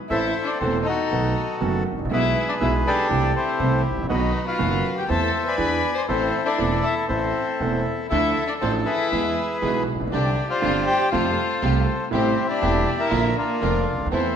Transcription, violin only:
0.09 E4
0.44 D4
0.57 C4
0.82 D#4
2.12 E4
2.49 D4
2.62 E4
2.87 D4
3.37 C4
4.11 D#4
4.48 F4
4.97 G4
5.09 A4
5.46 B4
5.94 C5
6.08 C4
6.45 D4
6.82 E4
7.09 C4
8.10 E4
8.48 D4
8.61 C4
8.86 E4
10.12 D4
10.50 F4
10.88 G4
11.13 F4
12.14 C4
12.51 D4
13.00 E4
13.37 A#3
14.12 C4

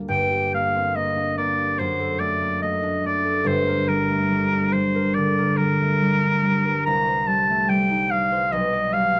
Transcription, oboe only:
0.10 G5
0.54 F5
0.96 D#5
1.38 D5
1.79 C5
2.20 D5
2.62 D#5
3.06 D5
3.47 C5
3.88 A#4
4.72 C5
5.15 D5
5.57 A#4
6.85 A#5
7.27 A5
7.69 G5
8.11 F5
8.52 D#5
8.93 F5

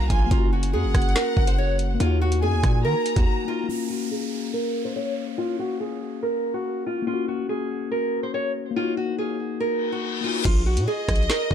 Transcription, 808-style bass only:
0.10 A#1
0.31 F#1
0.73 F#2
0.84 F#1
0.94 F#1
1.37 F#1
2.00 D#2
2.42 F#2
2.53 D#2
2.63 A#2
2.85 D#3
3.16 D#2
10.45 A#1
10.77 A#2
11.08 A#1
11.51 F2

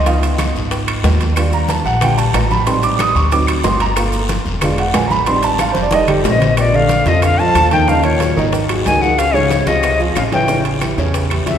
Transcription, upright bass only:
Already playing: C#2
0.55 G#1
1.03 D#2
1.85 A#1
2.33 A1
3.15 D2
3.63 G1
4.45 E1
4.93 A1
5.75 F1
6.24 A#1
7.06 F2
7.55 D#2
8.37 G#1
8.86 C#2
9.67 C#2
10.16 A1
10.97 E2
11.46 D2

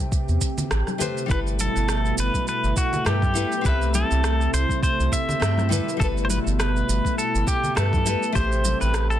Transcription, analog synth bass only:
0.29 E2
0.71 A1
1.30 G1
1.76 G1
2.18 G1
2.64 G1
3.06 G2
3.65 C2
4.11 C2
4.53 C2
5.00 C2
5.42 G2
6.01 G1
6.46 G1
6.89 G1
7.35 G1
7.77 G2
8.35 A1
8.82 A1

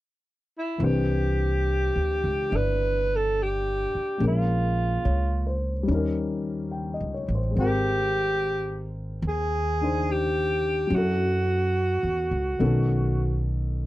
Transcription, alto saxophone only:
0.58 E4
0.84 G4
2.56 B4
3.16 A4
3.43 G4
4.27 F4
7.60 G4
9.28 G#4
10.11 G4
10.95 F#4

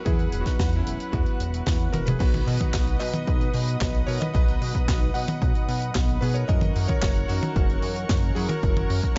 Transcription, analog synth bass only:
0.06 E2
0.33 E1
0.59 E2
0.86 E1
1.13 E2
1.40 E1
1.67 E2
1.93 E1
2.20 B1
2.47 B2
2.74 B1
3.01 B2
3.27 B1
3.54 B2
3.81 B1
4.08 B2
4.35 B1
4.61 B2
4.88 B1
5.15 B2
5.42 B1
5.68 B2
5.95 B1
6.22 B2
6.49 F#1
6.76 F#2
7.02 F#1
7.29 F#2
7.56 F#1
7.83 F#2
8.10 F#1
8.36 F#2
8.63 F#1
8.90 F#2

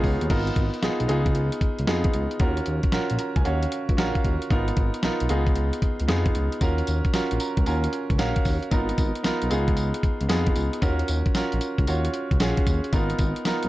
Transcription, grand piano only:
Already playing: B3 D#4 F4 G#4 D#5 F5 G#5 B5
0.04 C#5
0.30 B3 D#4 F4 A#4
0.82 B3 D#4 F4 G#4
1.08 B3 D#4 F4 G#4
1.87 B3 D#4 F4 G#4
2.40 C#4 F4 F#4 A#4
2.92 C#4 F4 F#4 A#4
3.19 A#5
3.36 G#5
3.45 C#4 F#4 C#5 F5 F#5
3.97 C#4 F4 F#4 A#4 F5
4.16 F5
4.50 B3 D#4 F4 A#4
5.03 B3 D#4 F4 A#4
5.29 B3 D#4 F4 G#4
6.08 B3 D#4 F4 G#4
6.61 C#4 F4 F#4 A#4
7.13 C#4 F4 F#4 A#4
7.40 A#5
7.66 C#4 F4 F#4 A#4 G#5
8.18 C#4 F#4 A#4 F5 F#5
8.71 B3 D#4 F4 A#4
9.23 B3 D#4 F4 A#4
9.50 B3 D#4 F4 G#4
10.29 B3 D#4 F4 G#4
10.82 C#4 F4 F#4 A#4
11.35 C#4 F4 F#4 A#4
11.87 C#4 F4 F#4 C#5
12.40 C#4 F4 F#4 G#4
12.92 B3 D#4 F4 A#4
13.45 B3 D#4 F4 A#4

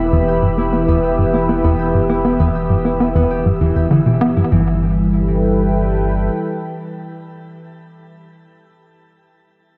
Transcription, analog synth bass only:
Already playing: B3
0.12 E2
0.42 G2
0.58 B3
0.73 B3
0.88 E2
1.18 G2
1.34 B3
1.49 B3
1.64 E2
1.94 G2
2.10 B3
2.25 B3
2.39 E2
2.70 G2
2.85 B3
3.00 B3
3.15 E2
3.45 G2
3.60 E2
3.76 E2
3.91 D3
4.06 B2
4.21 B3
4.37 G2
4.51 G2

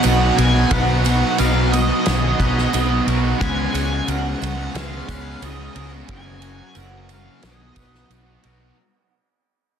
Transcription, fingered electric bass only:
0.05 B1
0.38 B1
0.71 B1
1.40 B1
2.08 B1
2.39 B1
2.74 B1
3.07 B1
3.41 C#2
3.74 C#2
4.08 C#2
4.42 C#2
4.75 C#2
5.09 C#2
5.42 C#2
5.75 C#2
6.09 F#1
6.76 F#1
7.44 B1
7.77 B1
8.10 B1
8.45 B1

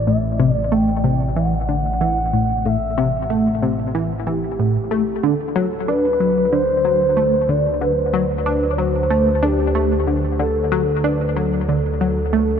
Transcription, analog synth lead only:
0.08 E5
0.54 D5
0.72 G5
1.36 F#5
2.66 E5
4.27 G4
5.23 A4
5.88 B4
6.52 C5
7.49 D5
7.81 B4
8.72 D5
8.78 C5
9.44 G4
10.40 A4
11.04 B4
11.37 A4

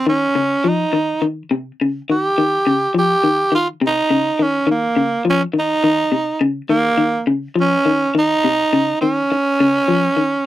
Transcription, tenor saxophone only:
0.09 C#4
0.68 D#4
2.11 G4
2.99 G4
3.55 F4
3.87 D#4
4.42 C#4
4.71 A#3
5.30 C#4
5.59 D#4
6.69 A#3
7.61 C#4
8.19 D#4
9.01 C#4

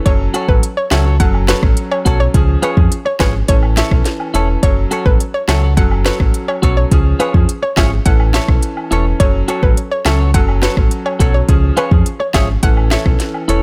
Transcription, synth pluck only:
0.06 C#5
0.49 B4
0.77 C#5
0.91 E5
1.20 F#5
1.49 B4
1.92 C#5
2.20 C#5
2.63 B4
3.06 C#5
3.20 B4
3.48 C#5
3.77 E5
4.63 C#5
5.06 B4
5.34 C#5
5.49 E5
5.77 F#5
6.06 B4
6.48 C#5
6.77 C#5
7.20 B4
7.63 C#5
7.77 E5
8.06 F#5
8.34 E5
9.20 C#5
9.63 B4
9.91 C#5
10.06 E5
10.34 F#5
10.63 B4
11.06 C#5
11.34 C#5
11.77 B4
12.20 C#5
12.34 E5
12.63 F#5
12.91 E5

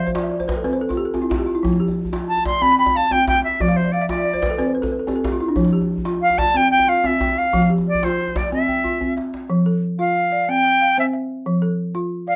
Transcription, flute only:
2.28 A5
2.46 C6
2.62 B5
2.79 B5
2.97 A5
3.12 G5
3.28 G5
3.44 E5
3.61 D5
3.76 C5
3.92 D5
4.09 D5
6.22 F5
6.38 A5
6.57 G5
6.71 G5
6.89 F5
7.06 E5
7.38 F5
7.88 D5
8.04 C5
8.37 D5
8.53 E5
9.99 F5
10.49 G5
11.00 E5
12.28 F5

